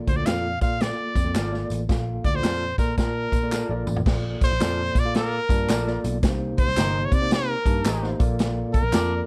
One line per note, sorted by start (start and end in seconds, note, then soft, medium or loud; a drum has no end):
0.00 0.58 A#2 medium
0.00 0.11 A#3 medium
0.00 0.11 F4 medium
0.00 0.11 A4 medium
0.00 0.11 D5 medium
0.07 0.23 D2 medium
0.07 0.18 C5 medium
0.07 kick medium
0.07 closed hi-hat medium
0.07 tambourine soft
0.16 0.49 A#3 medium
0.16 0.50 F4 medium
0.16 0.50 A4 medium
0.16 0.27 D5 medium
0.16 0.50 D5 medium
0.26 0.55 F2 medium
0.26 0.46 F4 medium
0.26 0.46 A4 medium
0.26 0.47 D5 medium
0.26 0.61 F5 loud
0.26 snare loud
0.26 clap medium
0.26 closed hi-hat medium
0.26 tambourine medium
0.61 0.91 A#2 medium
0.61 0.76 A#3 medium
0.61 0.76 F4 medium
0.61 0.76 A4 medium
0.61 0.76 D5 medium
0.61 0.83 F5 loud
0.61 kick medium
0.61 closed hi-hat medium
0.61 tambourine medium
0.80 1.19 A#3 medium
0.80 1.19 F4 medium
0.80 1.19 A4 medium
0.80 1.19 D5 medium
0.80 1.71 D5 medium
0.80 snare medium
0.80 closed hi-hat medium
0.80 tambourine soft
1.15 1.23 F2 medium
1.15 kick medium
1.15 closed hi-hat medium
1.15 tambourine medium
1.25 1.33 F2 medium
1.25 1.44 A#3 medium
1.25 1.44 F4 medium
1.25 1.44 A4 medium
1.25 1.45 D5 medium
1.34 1.63 G#1 medium
1.34 1.54 F4 medium
1.34 1.55 A4 medium
1.34 1.55 D5 medium
1.34 snare loud
1.34 clap loud
1.34 closed hi-hat medium
1.34 tambourine loud
1.52 1.83 A#3 medium
1.52 1.83 F4 medium
1.52 1.83 A4 medium
1.52 1.83 D5 medium
1.52 snare soft
1.70 1.85 A1 medium
1.70 closed hi-hat medium
1.70 tambourine medium
1.89 2.18 A#1 loud
1.89 2.75 A#2 medium
1.89 2.27 A#3 medium
1.89 2.27 F4 medium
1.89 2.28 A4 medium
1.89 2.28 F5 medium
1.89 kick loud
1.89 snare loud
1.89 closed hi-hat medium
1.89 tambourine soft
2.24 2.40 D2 medium
2.24 2.37 D5 loud
2.24 kick medium
2.24 closed hi-hat medium
2.24 tambourine soft
2.34 2.67 A#3 medium
2.34 2.67 F4 medium
2.34 2.67 A4 medium
2.34 2.78 C5 loud
2.34 2.67 D5 medium
2.43 2.72 F2 medium
2.43 2.63 F4 medium
2.43 2.63 A4 medium
2.43 2.64 D5 medium
2.43 snare loud
2.43 clap medium
2.43 closed hi-hat medium
2.43 tambourine medium
2.78 2.94 A#2 medium
2.78 2.94 A#3 medium
2.78 2.94 F4 medium
2.78 2.94 A4 medium
2.78 2.97 A#4 medium
2.78 2.94 D5 medium
2.78 kick medium
2.78 closed hi-hat medium
2.78 tambourine medium
2.98 3.26 A#2 loud
2.98 3.36 A#3 medium
2.98 3.36 F4 medium
2.98 3.83 A#4 medium
2.98 3.36 D5 medium
2.98 3.36 A5 medium
2.98 kick medium
2.98 snare loud
2.98 closed hi-hat medium
2.98 tambourine soft
3.32 3.62 A#2 medium
3.32 kick medium
3.32 closed hi-hat medium
3.32 tambourine medium
3.43 3.62 A#3 medium
3.43 3.62 F4 medium
3.43 3.62 A4 medium
3.43 3.62 D5 medium
3.52 3.71 F4 medium
3.52 3.72 A4 medium
3.52 3.72 D5 medium
3.52 snare medium
3.52 clap loud
3.52 tambourine loud
3.69 3.83 A#1 medium
3.69 4.00 A#3 medium
3.69 4.00 F4 medium
3.69 4.01 A4 medium
3.69 4.00 D5 medium
3.87 4.02 A1 medium
3.87 mid tom medium
3.87 tambourine medium
3.96 floor tom medium
4.06 4.34 A#1 loud
4.06 4.92 A#2 medium
4.06 4.52 A#3 medium
4.06 4.52 F4 medium
4.06 4.53 A4 medium
4.06 4.53 D5 medium
4.06 kick loud
4.06 snare loud
4.06 crash medium
4.06 tambourine soft
4.41 5.01 C5 loud
4.41 kick medium
4.41 closed hi-hat medium
4.41 tambourine soft
4.51 4.59 A#1 loud
4.60 4.89 F2 medium
4.60 4.99 A#3 medium
4.60 4.80 F4 medium
4.60 4.99 F4 medium
4.60 4.80 A4 medium
4.60 4.99 A4 medium
4.60 4.99 D5 medium
4.60 4.81 D5 loud
4.60 snare loud
4.60 clap medium
4.60 closed hi-hat medium
4.60 tambourine medium
4.95 5.39 A#2 loud
4.95 5.16 D5 loud
4.95 kick medium
4.95 closed hi-hat medium
4.95 tambourine medium
5.05 5.38 A#3 medium
5.05 5.38 F4 medium
5.05 5.38 A4 medium
5.05 5.38 F5 medium
5.14 5.38 A#3 medium
5.14 5.38 A4 medium
5.14 6.01 A#4 medium
5.14 5.38 D5 loud
5.14 snare loud
5.14 closed hi-hat medium
5.49 5.65 G2 medium
5.49 5.75 A#3 medium
5.49 5.75 F4 medium
5.49 5.75 D5 medium
5.49 5.75 A5 medium
5.49 kick medium
5.49 closed hi-hat medium
5.49 tambourine medium
5.68 5.97 A#1 medium
5.68 5.88 F4 medium
5.68 5.89 A4 medium
5.68 5.89 D5 medium
5.68 snare loud
5.68 clap loud
5.68 closed hi-hat medium
5.68 tambourine loud
5.87 6.17 A#3 medium
5.87 6.17 F4 medium
5.87 6.17 A4 medium
5.87 6.17 D5 loud
5.87 snare soft
6.04 6.19 B1 medium
6.04 closed hi-hat medium
6.04 tambourine medium
6.23 6.51 C2 loud
6.23 7.08 C3 medium
6.23 6.69 A#3 medium
6.23 6.69 D#4 medium
6.23 6.69 G4 medium
6.23 6.69 C5 medium
6.23 kick loud
6.23 snare loud
6.23 closed hi-hat loud
6.23 tambourine soft
6.58 7.06 C5 loud
6.58 kick loud
6.58 closed hi-hat medium
6.68 6.75 C2 loud
6.77 7.05 G1 medium
6.77 7.15 A#3 medium
6.77 7.15 D#4 medium
6.77 6.96 G4 medium
6.77 7.15 G4 medium
6.77 6.97 A#4 medium
6.77 7.15 C5 medium
6.77 6.97 D#5 medium
6.77 snare loud
6.77 clap loud
6.77 closed hi-hat medium
6.77 tambourine medium
7.05 7.15 C#5 medium
7.12 7.55 C3 loud
7.12 7.32 D5 loud
7.12 kick loud
7.12 closed hi-hat medium
7.12 tambourine medium
7.22 7.54 A#3 medium
7.22 7.54 D#4 medium
7.22 7.54 G4 medium
7.22 7.54 C5 medium
7.31 8.17 A#4 medium
7.31 snare loud
7.31 closed hi-hat medium
7.66 7.81 G2 medium
7.66 7.91 A#3 medium
7.66 7.91 D#4 medium
7.66 7.91 G4 medium
7.66 7.91 A5 medium
7.66 kick medium
7.66 closed hi-hat medium
7.66 tambourine medium
7.84 8.13 A1 medium
7.84 8.04 G4 medium
7.84 8.05 A#4 medium
7.84 8.05 D#5 medium
7.84 snare loud
7.84 clap loud
7.84 closed hi-hat medium
7.84 tambourine loud
8.03 8.18 A#3 medium
8.03 8.20 D#4 medium
8.03 8.20 G4 medium
8.03 8.20 C5 loud
8.03 snare soft
8.19 8.63 A#1 loud
8.19 8.89 A#2 medium
8.19 8.81 A#3 medium
8.19 8.81 F4 medium
8.19 8.81 A4 medium
8.19 8.81 D5 loud
8.19 kick loud
8.19 closed hi-hat medium
8.19 tambourine medium
8.39 snare loud
8.39 closed hi-hat medium
8.39 tambourine soft
8.74 9.24 A#4 medium
8.74 kick medium
8.74 closed hi-hat medium
8.74 tambourine soft
8.83 8.91 A#1 medium
8.93 9.21 F2 medium
8.93 9.27 A#3 medium
8.93 9.12 F4 medium
8.93 9.27 F4 medium
8.93 9.27 A4 medium
8.93 9.12 A4 medium
8.93 9.27 D5 medium
8.93 9.13 D5 medium
8.93 snare loud
8.93 clap medium
8.93 closed hi-hat medium
8.93 tambourine medium